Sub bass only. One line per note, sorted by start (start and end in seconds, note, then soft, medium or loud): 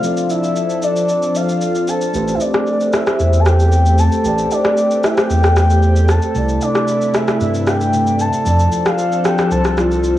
2.14 2.37 A1 loud
3.20 4.09 E2 loud
4.25 4.47 A1 loud
5.30 6.20 E2 medium
6.35 6.58 C2 loud
7.41 8.30 G2 loud
8.46 8.68 F2 loud
9.51 10.19 C2 medium